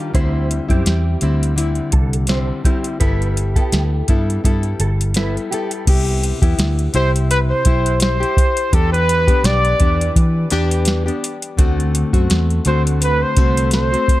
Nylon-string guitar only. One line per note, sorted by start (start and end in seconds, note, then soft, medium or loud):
0.00 0.13 D#3 medium
0.00 0.13 G3 medium
0.00 0.14 D4 medium
0.00 0.15 F4 medium
0.14 0.69 D3 medium
0.14 0.70 G3 medium
0.14 0.69 C4 medium
0.14 0.67 E4 medium
0.69 1.21 G3 medium
0.69 1.21 C4 medium
0.69 1.21 E4 medium
1.21 1.55 D3 medium
1.21 1.56 G3 medium
1.21 1.56 C4 medium
1.21 1.57 E4 medium
1.56 2.28 D3 medium
1.56 2.28 G3 medium
1.56 2.28 C4 medium
1.56 2.30 E4 medium
2.28 2.63 D3 medium
2.28 2.63 G3 medium
2.28 2.64 C4 medium
2.28 2.65 E4 medium
2.64 3.00 D3 medium
2.64 2.99 G3 medium
2.64 3.00 C4 medium
2.64 3.00 E4 medium
3.00 3.56 G3 medium
3.00 3.56 B3 medium
3.00 3.56 E4 medium
3.00 3.55 A4 medium
3.56 4.08 B3 soft
3.56 4.08 E4 soft
3.56 4.08 A4 medium
4.08 4.43 G3 medium
4.08 4.43 B3 medium
4.08 4.44 E4 medium
4.08 4.45 A4 medium
4.44 5.15 G3 medium
4.44 5.16 B3 medium
4.44 5.17 E4 medium
4.44 5.16 A4 medium
5.16 5.50 G3 medium
5.16 5.51 B3 medium
5.16 5.52 E4 medium
5.16 5.52 A4 medium
5.52 5.87 G3 medium
5.52 5.87 B3 medium
5.52 5.87 E4 medium
5.52 5.88 A4 medium
5.87 6.43 C3 medium
5.87 6.43 B3 medium
5.87 6.42 E4 medium
5.87 6.41 G4 medium
6.42 6.95 B3 medium
6.42 6.94 E4 medium
6.42 6.94 G4 medium
6.93 7.65 C3 medium
6.93 7.66 E4 medium
6.93 7.66 G4 medium
7.66 8.20 E4 medium
7.66 8.19 G4 medium
8.20 8.73 E4 soft
8.20 8.72 G4 medium
8.72 9.28 E3 medium
8.72 9.28 B3 medium
8.72 9.27 D4 medium
8.72 9.26 G4 medium
9.27 9.79 B3 medium
9.27 9.80 D4 medium
9.27 9.80 G4 medium
9.79 10.50 E3 medium
9.79 10.50 B3 medium
9.79 10.52 D4 medium
9.79 10.51 G4 medium
10.51 11.07 E3 medium
10.51 11.07 B3 loud
10.51 11.06 D4 loud
10.51 11.05 G4 loud
11.06 11.59 B3 soft
11.06 11.59 D4 medium
11.06 11.58 G4 medium
11.57 12.13 D3 medium
11.57 12.14 A3 medium
11.57 12.13 C4 medium
11.57 12.12 F#4 medium
12.13 12.65 A3 medium
12.13 12.66 C4 medium
12.13 12.65 F#4 medium
12.66 13.36 D3 medium
12.66 13.37 A3 medium
12.66 13.37 C4 medium
12.66 13.38 F#4 medium
13.37 13.92 D3 medium
13.37 13.93 A3 medium
13.37 13.92 C4 medium
13.37 13.91 F#4 medium
13.92 14.20 A3 soft
13.92 14.20 C4 medium
13.92 14.20 F#4 medium